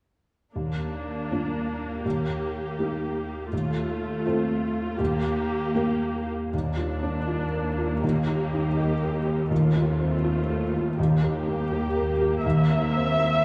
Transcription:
0.54 1.28 D#2 soft
0.54 3.48 A#3 soft
0.54 2.00 D4 soft
1.31 2.01 A#3 soft
1.31 2.01 D4 soft
1.31 2.02 F4 soft
2.05 2.77 D#2 soft
2.05 3.53 G4 soft
2.79 3.48 A#3 soft
2.79 3.48 D#4 soft
2.79 3.48 G4 soft
3.52 4.23 D#2 soft
3.52 4.99 A3 soft
3.52 4.96 F4 soft
4.25 4.95 C4 soft
4.25 4.95 F4 soft
4.25 4.96 A4 soft
4.98 5.73 D#2 soft
4.98 6.30 A#3 soft
4.98 6.32 G4 soft
5.75 6.49 A#3 soft
5.75 6.49 G4 soft
5.75 6.49 A#4 soft
6.52 12.41 D#2 soft
6.52 8.00 D#2 soft
6.52 8.01 D#3 soft
6.52 9.46 A#3 soft
6.52 7.99 D4 soft
6.77 8.06 D4 soft
6.77 7.18 F4 soft
7.02 7.43 D4 soft
7.02 7.52 A#4 soft
7.27 7.68 F4 soft
7.27 8.06 D5 soft
7.53 7.93 A#4 soft
7.53 8.51 A#4 soft
7.78 8.06 F4 soft
7.78 8.03 F4 soft
8.02 9.47 D#2 soft
8.02 9.49 D#3 soft
8.02 9.46 G4 soft
8.27 9.53 D#4 soft
8.27 8.67 G4 soft
8.52 8.92 D#4 soft
8.52 8.99 A#4 soft
8.77 9.17 G4 soft
8.77 9.53 D#5 soft
9.00 9.53 A#4 soft
9.00 9.41 A#4 soft
9.25 9.53 G4 soft
9.25 9.51 G4 soft
9.50 10.94 D#2 soft
9.50 10.97 D#3 soft
9.50 10.94 A3 soft
9.50 10.94 F4 soft
9.74 11.00 C4 soft
9.74 10.14 F4 soft
9.99 10.39 C4 soft
9.99 10.48 A4 soft
10.24 10.64 F4 soft
10.24 11.01 C5 soft
10.49 11.01 A4 soft
10.49 10.89 A4 soft
10.73 11.01 F4 soft
10.73 10.99 F4 soft
10.98 12.41 D#2 soft
10.98 12.43 D#3 soft
10.98 13.45 A#3 soft
10.98 12.41 G4 soft
11.22 13.45 A#3 soft
11.22 11.62 G4 soft
11.47 11.86 A#3 soft
11.47 11.95 A#4 soft
11.71 12.19 G4 soft
11.71 12.11 G4 soft
11.96 12.92 A#4 soft
11.96 12.35 A#4 soft
12.21 13.45 G4 soft
12.21 12.45 G4 soft
12.44 13.45 D#2 soft
12.44 13.45 D#3 soft
12.44 13.45 E5 medium
12.69 13.45 C4 soft
12.69 13.08 E5 soft
12.93 13.33 C4 soft
12.93 13.40 A#4 soft
13.17 13.45 C5 soft
13.17 13.45 E5 soft
13.42 13.45 A#4 soft

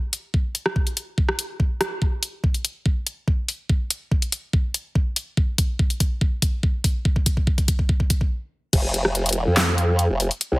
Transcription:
0.13 closed hi-hat medium
0.34 kick loud
0.55 closed hi-hat medium
0.66 cross-stick medium
0.76 kick loud
0.87 closed hi-hat soft
0.97 closed hi-hat medium
1.18 kick loud
1.29 cross-stick medium
1.39 closed hi-hat medium
1.60 kick loud
1.81 cross-stick medium
1.81 closed hi-hat medium
2.02 kick loud
2.23 closed hi-hat medium
2.44 kick loud
2.54 closed hi-hat soft
2.65 closed hi-hat medium
2.86 kick loud
3.07 closed hi-hat medium
3.28 kick loud
3.48 open hi-hat medium
3.69 kick loud
3.90 closed hi-hat medium
4.11 kick loud
4.22 closed hi-hat soft
4.32 closed hi-hat medium
4.53 kick loud
4.74 closed hi-hat medium
4.95 kick loud
5.16 open hi-hat loud
5.37 kick loud
5.58 kick loud
5.58 closed hi-hat medium
5.79 kick loud
5.90 closed hi-hat soft
6.00 kick loud
6.00 closed hi-hat medium
6.21 kick loud
6.42 kick loud
6.42 closed hi-hat medium
6.63 kick loud
6.84 kick loud
6.84 open hi-hat loud
7.05 kick loud
7.16 kick medium
7.26 kick loud
7.26 closed hi-hat medium
7.37 kick medium
7.47 kick loud
7.58 kick medium
7.58 closed hi-hat soft
7.68 kick loud
7.68 closed hi-hat medium
7.79 kick medium
7.89 kick loud
8.00 kick medium
8.10 kick loud
8.10 closed hi-hat medium
8.21 kick medium
8.73 9.03 F1 loud
8.73 kick loud
8.73 closed hi-hat medium
8.73 crash loud
8.94 closed hi-hat medium
9.05 9.45 F1 loud
9.05 cross-stick soft
9.15 closed hi-hat medium
9.26 closed hi-hat medium
9.29 closed hi-hat medium
9.33 closed hi-hat medium
9.47 10.08 F2 loud
9.57 cross-stick medium
9.57 snare loud
9.57 clap loud
9.57 closed hi-hat medium
9.78 closed hi-hat medium
9.99 closed hi-hat medium
10.10 10.29 F1 loud
10.20 open hi-hat medium
10.31 closed hi-hat soft
10.41 closed hi-hat medium
10.52 10.59 C2 loud

